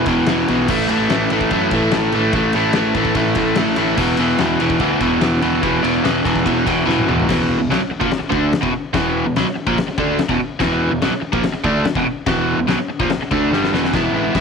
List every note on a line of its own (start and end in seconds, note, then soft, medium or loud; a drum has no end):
0.06 0.23 E1 medium
0.06 0.27 E2 medium
0.06 0.28 B2 medium
0.06 0.29 E3 loud
0.06 kick medium
0.06 ride medium
0.26 0.44 E1 loud
0.26 0.48 E2 medium
0.26 0.48 B2 loud
0.26 0.49 E3 loud
0.26 snare loud
0.26 ride loud
0.48 0.65 B1 medium
0.48 0.68 E2 medium
0.48 0.68 B2 medium
0.48 0.69 E3 medium
0.48 ride medium
0.68 0.85 A1 loud
0.68 0.88 A2 loud
0.68 0.89 E3 loud
0.68 0.90 A3 loud
0.68 kick loud
0.68 crash loud
0.89 1.06 A1 medium
0.89 1.09 A2 medium
0.89 1.10 E3 medium
0.89 1.11 A3 medium
0.89 ride medium
1.10 1.27 A1 medium
1.10 1.31 A2 loud
1.10 1.32 E3 loud
1.10 1.33 A3 loud
1.10 snare loud
1.10 ride loud
1.30 1.47 A1 loud
1.30 1.50 A2 medium
1.30 1.52 E3 medium
1.30 1.52 A3 medium
1.30 ride medium
1.41 kick medium
1.51 1.68 F#2 medium
1.51 1.72 A2 medium
1.51 1.73 E3 loud
1.51 1.73 A3 loud
1.51 kick loud
1.51 ride loud
1.71 1.88 A1 loud
1.71 1.92 A2 medium
1.71 1.94 E3 medium
1.71 1.94 A3 medium
1.71 kick loud
1.71 ride medium
1.91 2.09 A1 loud
1.91 2.13 A2 loud
1.91 2.14 E3 loud
1.91 2.14 A3 loud
1.91 snare loud
1.91 ride loud
2.12 2.29 A1 medium
2.12 2.33 A2 medium
2.12 2.35 E3 medium
2.12 2.34 A3 medium
2.12 ride medium
2.33 2.50 A1 loud
2.33 2.54 A2 medium
2.33 2.55 E3 medium
2.33 2.55 A3 loud
2.33 kick loud
2.33 ride loud
2.53 2.71 A1 medium
2.53 2.73 A2 medium
2.53 2.75 E3 medium
2.53 2.75 A3 medium
2.53 ride medium
2.73 2.91 A1 medium
2.73 2.94 A2 loud
2.73 2.96 E3 loud
2.73 2.95 A3 loud
2.73 snare loud
2.73 ride loud
2.95 3.12 A1 loud
2.95 3.14 A2 medium
2.95 3.16 E3 medium
2.95 3.16 A3 loud
2.95 kick medium
2.95 ride medium
3.05 kick medium
3.15 3.32 A1 medium
3.15 3.35 A2 medium
3.15 3.37 E3 loud
3.15 3.37 A3 loud
3.15 kick loud
3.15 ride loud
3.35 3.52 A1 loud
3.35 3.56 A2 medium
3.35 3.57 E3 medium
3.35 3.57 A3 loud
3.35 kick medium
3.35 ride medium
3.55 3.74 A1 loud
3.55 3.76 A2 medium
3.55 3.78 E3 loud
3.55 3.77 A3 loud
3.55 snare loud
3.55 ride loud
3.76 3.94 A1 medium
3.76 3.97 A2 medium
3.76 3.98 E3 medium
3.76 3.97 A3 loud
3.76 ride medium
3.97 4.15 E1 loud
3.97 4.18 E2 loud
3.97 4.18 B2 loud
3.97 4.20 E3 loud
3.97 kick loud
3.97 crash loud
4.17 4.35 E1 medium
4.17 4.38 E2 medium
4.17 4.39 B2 medium
4.17 4.40 E3 loud
4.17 ride medium
4.38 4.56 E1 medium
4.38 4.59 E2 loud
4.38 4.60 B2 loud
4.38 4.61 E3 loud
4.38 snare loud
4.38 ride loud
4.60 4.77 E1 loud
4.60 4.80 E2 medium
4.60 4.79 B2 loud
4.60 4.81 E3 loud
4.60 ride medium
4.70 kick medium
4.79 4.97 D2 medium
4.79 5.00 E2 loud
4.79 5.00 B2 loud
4.79 5.02 E3 loud
4.79 kick loud
4.79 ride loud
5.00 5.17 E1 medium
5.00 5.21 E2 medium
5.00 5.20 B2 medium
5.00 5.22 E3 medium
5.00 kick loud
5.00 ride medium
5.21 5.39 E1 loud
5.21 5.41 E2 medium
5.21 5.41 B2 loud
5.21 5.42 E3 loud
5.21 snare loud
5.21 ride loud
5.42 5.59 E1 medium
5.42 5.61 E2 medium
5.42 5.62 B2 medium
5.42 5.62 E3 medium
5.42 ride medium
5.62 5.79 E1 loud
5.62 5.81 E2 loud
5.62 5.82 B2 loud
5.62 5.83 E3 loud
5.62 kick loud
5.62 ride loud
5.82 6.00 E1 medium
5.82 6.02 E2 medium
5.82 6.03 B2 medium
5.82 6.04 E3 medium
5.82 ride medium
6.03 6.21 E1 loud
6.03 6.23 E2 loud
6.03 6.24 B2 loud
6.03 6.24 E3 loud
6.03 snare loud
6.03 ride loud
6.24 6.42 E1 loud
6.24 6.44 E2 loud
6.24 6.44 B2 medium
6.24 6.45 E3 loud
6.24 kick medium
6.24 ride medium
6.36 kick medium
6.45 6.62 E1 medium
6.45 6.64 E2 medium
6.45 6.65 B2 loud
6.45 6.66 E3 loud
6.45 kick loud
6.45 ride loud
6.65 6.83 E1 medium
6.65 6.84 E2 medium
6.65 6.84 B2 loud
6.65 6.85 E3 loud
6.65 kick loud
6.65 ride medium
6.85 7.03 E1 medium
6.85 7.06 E2 medium
6.85 7.07 B2 loud
6.85 7.08 E3 loud
6.89 snare medium
6.99 high tom medium
7.05 7.23 E1 medium
7.05 7.27 E2 medium
7.05 7.28 B2 medium
7.05 7.28 E3 loud
7.05 mid tom loud
7.20 floor tom loud
7.28 7.58 E1 loud
7.28 7.59 E2 medium
7.28 7.59 B2 loud
7.28 7.60 E3 loud
7.28 kick loud
7.28 snare loud
7.28 crash loud
7.28 crash medium
7.59 7.69 E1 medium
7.59 7.70 E2 medium
7.59 7.69 B2 medium
7.70 7.79 B1 loud
7.70 7.80 B2 medium
7.70 7.80 F#3 loud
7.70 snare loud
7.70 crash medium
7.80 muted picked electric bass stroke soft
7.80 muted overdriven electric guitar stroke medium
7.91 muted picked electric bass stroke soft
7.91 muted overdriven electric guitar stroke medium
8.01 8.10 A#1 medium
8.01 8.11 A#2 medium
8.01 8.11 F3 loud
8.01 kick loud
8.11 muted picked electric bass stroke soft
8.11 muted overdriven electric guitar stroke medium
8.11 snare loud
8.11 crash medium
8.20 muted overdriven electric guitar stroke medium
8.20 muted picked electric bass stroke soft
8.30 8.51 D2 loud
8.30 8.51 D3 medium
8.30 8.52 A3 loud
8.30 8.52 D4 medium
8.30 kick loud
8.52 muted overdriven electric guitar stroke medium
8.52 muted picked electric bass stroke soft
8.52 snare loud
8.52 crash medium
8.61 8.73 E1 medium
8.61 8.72 E2 medium
8.61 8.73 B2 loud
8.61 kick loud
8.73 muted overdriven electric guitar stroke medium
8.73 muted picked electric bass stroke soft
8.94 9.23 E1 loud
8.94 9.25 E2 medium
8.94 9.25 B2 loud
8.94 9.25 E3 loud
8.94 kick loud
8.94 snare loud
8.94 crash medium
9.26 9.36 E1 medium
9.26 9.36 E2 medium
9.26 9.35 B2 medium
9.36 9.46 B1 medium
9.36 9.46 B2 medium
9.36 9.47 F#3 loud
9.36 snare loud
9.36 crash medium
9.47 muted picked electric bass stroke soft
9.47 muted overdriven electric guitar stroke medium
9.56 muted overdriven electric guitar stroke medium
9.56 muted picked electric bass stroke soft
9.66 9.77 A#1 loud
9.66 9.77 A#2 medium
9.66 9.77 F3 medium
9.66 kick loud
9.77 muted overdriven electric guitar stroke medium
9.77 muted picked electric bass stroke soft
9.77 snare loud
9.77 crash medium
9.88 muted overdriven electric guitar stroke medium
9.88 muted picked electric bass stroke soft
9.98 10.18 D2 loud
9.98 10.19 D3 medium
9.98 10.19 A3 loud
9.98 10.19 D4 loud
9.98 kick loud
10.18 muted overdriven electric guitar stroke medium
10.18 muted picked electric bass stroke soft
10.18 snare loud
10.18 crash medium
10.29 10.39 E1 medium
10.29 10.39 E2 medium
10.29 10.40 B2 loud
10.29 kick loud
10.40 muted picked electric bass stroke soft
10.40 muted overdriven electric guitar stroke medium
10.60 10.89 E1 loud
10.60 10.90 E2 loud
10.60 10.90 B2 medium
10.60 10.91 E3 loud
10.60 kick loud
10.60 snare loud
10.60 crash medium
10.91 11.02 E1 medium
10.91 11.02 E2 medium
10.91 11.01 B2 medium
11.02 11.12 B1 loud
11.02 11.12 B2 medium
11.02 11.13 F#3 loud
11.02 snare loud
11.02 crash medium
11.12 muted overdriven electric guitar stroke medium
11.12 muted picked electric bass stroke soft
11.22 muted overdriven electric guitar stroke medium
11.22 muted picked electric bass stroke soft
11.32 11.43 A#1 loud
11.32 11.43 A#2 medium
11.32 11.43 F3 medium
11.32 kick loud
11.43 muted overdriven electric guitar stroke medium
11.43 muted picked electric bass stroke soft
11.43 snare loud
11.43 crash medium
11.54 muted overdriven electric guitar stroke medium
11.54 muted picked electric bass stroke soft
11.64 11.83 D2 loud
11.64 11.85 D3 medium
11.64 11.85 A3 loud
11.64 11.85 D4 loud
11.64 kick loud
11.84 muted picked electric bass stroke soft
11.84 muted overdriven electric guitar stroke medium
11.84 snare loud
11.84 crash medium
11.95 12.03 E1 medium
11.95 12.05 E2 loud
11.95 12.06 B2 loud
11.95 kick loud
12.04 muted picked electric bass stroke soft
12.04 muted overdriven electric guitar stroke medium
12.26 12.56 E1 loud
12.26 12.57 E2 medium
12.26 12.58 B2 loud
12.26 12.58 E3 loud
12.26 kick loud
12.26 snare loud
12.26 crash medium
12.57 12.67 E1 medium
12.57 12.69 E2 medium
12.57 12.66 B2 medium
12.67 12.78 B1 loud
12.67 12.78 B2 loud
12.67 12.78 F#3 loud
12.67 snare loud
12.67 crash medium
12.79 muted overdriven electric guitar stroke medium
12.79 muted picked electric bass stroke soft
12.88 muted picked electric bass stroke soft
12.88 muted overdriven electric guitar stroke medium
13.00 13.07 A#1 loud
13.00 13.10 A#2 medium
13.00 13.10 F3 loud
13.00 kick loud
13.07 muted picked electric bass stroke soft
13.07 muted overdriven electric guitar stroke medium
13.07 snare loud
13.07 crash medium
13.19 muted picked electric bass stroke soft
13.19 muted overdriven electric guitar stroke medium
13.31 13.49 D2 loud
13.31 13.51 D3 medium
13.31 13.52 A3 loud
13.31 13.52 D4 loud
13.31 kick loud
13.49 13.70 G1 loud
13.49 13.72 G2 medium
13.49 13.72 D3 medium
13.49 13.73 G3 loud
13.49 snare medium
13.64 snare medium
13.72 13.92 E1 medium
13.72 13.93 E2 medium
13.72 13.92 B2 medium
13.72 13.92 E3 loud
13.72 snare medium
13.85 snare medium
13.93 14.08 E1 medium
13.93 14.33 E3 medium
13.93 14.16 G#3 loud
13.93 14.15 B3 loud
13.93 14.13 E4 loud
13.93 kick loud
13.93 snare loud
13.93 crash medium
14.13 14.28 A1 medium
14.13 14.35 G#3 medium
14.13 14.36 B3 medium
14.13 14.36 E4 medium
14.34 14.40 E1 medium
14.34 14.40 E3 medium
14.34 14.40 G#3 medium
14.34 14.40 B3 medium
14.34 14.40 E4 medium
14.34 kick loud
14.34 snare loud
14.34 crash medium